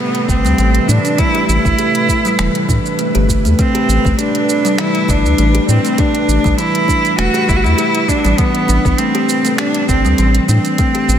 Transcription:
Already playing: A2 C3 G3 A3 B4
0.00 B3
0.15 closed hi-hat
0.28 G1 C4, kick, shaker
0.45 D2 G3, shaker
0.58 A1 E3, closed hi-hat, shaker
0.75 closed hi-hat
0.88 A2 D4, shaker
1.05 closed hi-hat, shaker
1.18 A3 E4, kick, closed hi-hat, shaker
1.35 G4, closed hi-hat
1.49 A1 E4, shaker
1.65 A1 A3, kick, shaker
1.79 G4, closed hi-hat, shaker
1.95 closed hi-hat
2.09 kick, shaker
2.25 G3, closed hi-hat, shaker
2.39 E1 E3, finger snap, closed hi-hat, shaker
2.55 closed hi-hat
2.69 A2 D4, kick, shaker
2.86 shaker
2.99 A3, closed hi-hat, shaker
3.15 G1 G4, closed hi-hat
3.29 kick, shaker
3.45 E2 A3, closed hi-hat, shaker
3.59 A3 C4, kick, closed hi-hat, shaker
3.75 G4, closed hi-hat
3.89 A1, shaker
4.05 A1 A3, kick, shaker
4.19 D4 G4, closed hi-hat, shaker
4.35 closed hi-hat
4.49 shaker
4.65 G3, closed hi-hat, shaker
4.78 E3 E4, finger snap, closed hi-hat, shaker
4.95 closed hi-hat
5.08 G1 D4, kick, shaker
5.25 D2, shaker
5.38 A1 A3, closed hi-hat, shaker
5.55 G4, closed hi-hat
5.68 A2 C4, shaker
5.85 A3, closed hi-hat, shaker
5.98 D4 G4, kick, closed hi-hat, shaker
6.15 closed hi-hat
6.28 A1, shaker
6.44 A1 G3, kick, shaker
6.58 E3 E4, closed hi-hat, shaker
6.75 closed hi-hat
6.88 D4, kick, shaker
7.05 closed hi-hat, shaker
7.18 E1 A3 F#4, finger snap, closed hi-hat, shaker
7.34 G4, closed hi-hat
7.49 G1 E4, kick, shaker
7.56 F#4
7.64 E2 A3 E4, shaker
7.78 G4, closed hi-hat, shaker
7.95 closed hi-hat
8.08 D4, kick, shaker
8.25 A1 G3, closed hi-hat, shaker
8.38 E3 B3, kick, closed hi-hat, shaker
8.55 closed hi-hat
8.68 A1 D4, shaker
8.85 A1, kick, shaker
8.98 A3 C4, closed hi-hat, shaker
9.15 G4, closed hi-hat
9.29 shaker
9.45 A3, closed hi-hat, shaker
9.58 D4 G4, finger snap, closed hi-hat, shaker
9.74 closed hi-hat
9.88 G1 C4, kick, shaker
10.05 D2 G3, shaker
10.18 A1 E3, closed hi-hat, shaker
10.35 closed hi-hat
10.48 A2 C4 D4, shaker
10.65 closed hi-hat, shaker
10.78 A3, kick, closed hi-hat, shaker
10.95 G4, closed hi-hat
11.08 A1, shaker

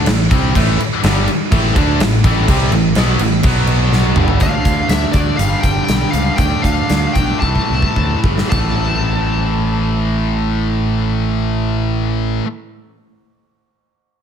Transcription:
0.06 A1 A2 E3, snare, crash
0.31 C2 C3 G3 C4, kick, crash
0.55 A1 A2 E3 A3, kick, crash
0.79 muted distorted electric guitar stroke, crash
1.03 G1 G2 D3 G3, snare, crash
1.28 muted distorted electric guitar stroke, muted picked electric bass stroke, crash
1.52 A1 A2 E3 A3, kick, crash
1.75 D2 D3 A3 D4, kick, crash
1.99 A1 A2 E3, snare, crash
2.24 A1 A2 E3 A3, kick, crash
2.48 C2 C3 G3 C4, kick, crash
2.71 A1 A2 E3, crash
2.95 B1 B2 F#3 B3, snare, crash
3.19 A1 A2 E3, crash
3.43 B1 B2 F#3 B3, kick, crash
3.67 crash
3.93 snare
4.16 G1 G2 D3 G3, mid tom
4.28 floor tom
4.40 D2 D3 A3 F5, kick, closed hi-hat
4.45 D4
4.65 D2, kick, closed hi-hat
4.89 D2 E5, snare, closed hi-hat
5.12 D2 D4 D5, kick, closed hi-hat
5.17 D3 A3
5.37 G1 G2 D3 F5, closed hi-hat
5.42 G3
5.61 G1 G5, kick, closed hi-hat
5.85 G5, closed hi-hat
5.89 B1, snare
6.10 C#2 G3 F5, closed hi-hat
6.15 G2 D3
6.36 D2 D3 G5, kick, closed hi-hat
6.41 A3 D4
6.62 D2 F5, kick, closed hi-hat
6.90 D2, snare, closed hi-hat
7.13 B1 D4 G5, kick, closed hi-hat
7.18 D3 A3
7.40 C2 A2 A5, kick
7.45 E3 A3
7.55 kick
7.70 C2
7.82 kick
7.96 D2, kick
8.23 G1 A2 E3 A3, kick
8.38 snare
8.50 A1 A2 E3 A5, kick, floor tom, crash
8.56 A3

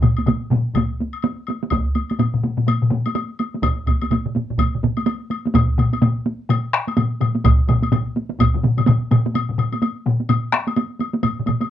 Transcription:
0.01 taiko, taiko low-mid, taiko mid, taiko high, high woodblock
0.17 taiko high, high woodblock
0.26 taiko low-mid, taiko mid, taiko high, high woodblock
0.50 taiko low-mid, taiko mid, taiko high
0.74 taiko, taiko low-mid, taiko mid, taiko high, high woodblock
1.00 taiko high
1.13 high woodblock
1.23 taiko high, high woodblock
1.47 taiko high, high woodblock
1.64 taiko high
1.71 taiko, taiko high, high woodblock
1.95 taiko high, high woodblock
2.10 taiko high, high woodblock
2.19 taiko low-mid, taiko high, high woodblock
2.34 taiko low-mid
2.43 taiko low-mid, taiko high
2.57 taiko low-mid, taiko high
2.67 taiko low-mid, taiko high, high woodblock
2.82 taiko low-mid
2.90 taiko low-mid, taiko high
3.06 taiko high, high woodblock
3.15 taiko high, high woodblock
3.39 taiko high, high woodblock
3.54 taiko high
3.62 taiko, taiko high, high woodblock
3.87 taiko, taiko high, high woodblock
4.01 taiko high, high woodblock
4.11 taiko mid, taiko high, high woodblock
4.26 taiko mid
4.35 taiko mid, taiko high
4.51 taiko mid
4.58 taiko, taiko mid, taiko high, high woodblock
4.75 taiko mid
4.83 taiko mid, taiko high
4.97 taiko high, high woodblock
5.06 taiko high, high woodblock
5.30 taiko high, high woodblock
5.46 taiko high
5.54 taiko, taiko low-mid, taiko high, high woodblock
5.78 taiko low-mid, taiko high, high woodblock
5.93 taiko high, high woodblock
6.02 taiko low-mid, taiko high, high woodblock
6.26 taiko high
6.49 taiko low-mid, taiko high, high woodblock
6.73 taiko rim
6.88 taiko high, high woodblock
6.97 taiko low-mid, taiko high, high woodblock
7.21 taiko low-mid, taiko high, high woodblock
7.35 taiko high
7.44 taiko, taiko low-mid, taiko mid, taiko high, high woodblock
7.68 taiko, taiko low-mid, taiko mid, taiko high, high woodblock
7.82 taiko high, high woodblock
7.92 taiko low-mid, taiko mid, taiko high, high woodblock
8.16 taiko high
8.30 taiko high
8.39 taiko, taiko low-mid, taiko mid, taiko high, high woodblock
8.54 taiko low-mid, taiko mid
8.63 taiko low-mid, taiko mid, taiko high
8.77 taiko low-mid, taiko mid, taiko high, high woodblock
8.86 taiko low-mid, taiko mid, taiko high, high woodblock
9.11 taiko low-mid, taiko mid, taiko high, high woodblock
9.26 taiko high
9.34 taiko low-mid, taiko high, high woodblock
9.49 taiko low-mid
9.58 taiko low-mid, high woodblock
9.73 taiko high, high woodblock
9.82 taiko high, high woodblock
10.06 taiko low-mid, taiko high
10.20 taiko high
10.29 taiko low-mid, taiko high, high woodblock
10.53 taiko rim, taiko high
10.67 taiko high, high woodblock
10.76 taiko high, high woodblock
10.99 taiko high, high woodblock
11.13 taiko high
11.23 taiko mid, taiko high, high woodblock
11.40 taiko mid
11.46 taiko mid, taiko high, high woodblock
11.61 taiko high, high woodblock

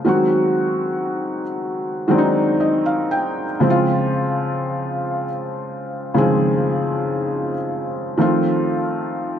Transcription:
0.05 D#3 F#3 G#3 C4 F#4
2.08 D#3 F#3 G#3 C4 D4
2.18 D#4
2.60 D#5
2.86 F5
3.11 G5
3.60 C#3 F3 G#3 C4 E4
3.70 F4
6.14 C#3 D#3 G#3 C4 G#4
6.22 F3
8.17 D#3 F3 A3 C4 F4

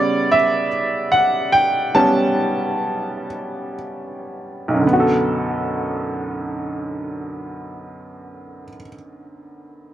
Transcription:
Already playing: C#3 G3 B3 C#5 D5
0.32 E5
1.12 F#5
1.52 G5
1.95 G3 B3 C#4 A5
4.68 B1
4.74 F#2
4.81 D3
4.87 B3
4.93 F#4
5.00 A4

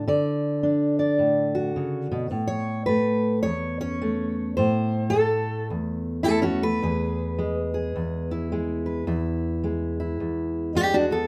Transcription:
0.07 D3 D5
0.63 D4
0.99 D5
1.19 A2
1.55 F#4
1.76 C#3
2.12 B2
2.29 A2 B4
2.47 C#5
2.86 A3 B4
3.43 E2 C#5
3.81 C#4 C#5
4.02 A3
4.57 A2 C5
5.10 A3 A4
5.70 E2
6.23 A3 E4 A4
6.42 C#4 F#4
6.63 A3 B4
6.83 E2 G#4
7.39 G#3
7.74 G#4
7.96 E2
8.31 E4
8.52 G#3
8.86 B4
9.07 E2 E4
9.64 G#3
10.00 E4
10.20 E2
10.75 G#3 D4 G4
10.94 D4 F#4
11.11 B3 A4

